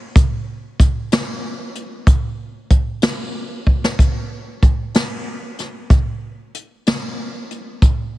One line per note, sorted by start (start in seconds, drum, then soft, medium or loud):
0.16 kick loud
0.16 closed hi-hat medium
0.80 kick medium
0.80 closed hi-hat medium
1.12 snare loud
1.12 closed hi-hat medium
1.75 closed hi-hat soft
2.07 kick medium
2.07 closed hi-hat medium
2.70 kick medium
2.70 closed hi-hat medium
3.02 snare medium
3.02 closed hi-hat medium
3.67 kick medium
3.84 snare medium
3.99 kick medium
3.99 closed hi-hat medium
4.63 kick medium
4.63 closed hi-hat soft
4.94 snare medium
4.94 closed hi-hat medium
5.59 snare soft
5.59 closed hi-hat soft
5.90 kick medium
5.90 closed hi-hat medium
6.55 closed hi-hat soft
6.86 snare medium
6.86 closed hi-hat medium
7.51 closed hi-hat soft
7.82 kick medium
7.82 closed hi-hat medium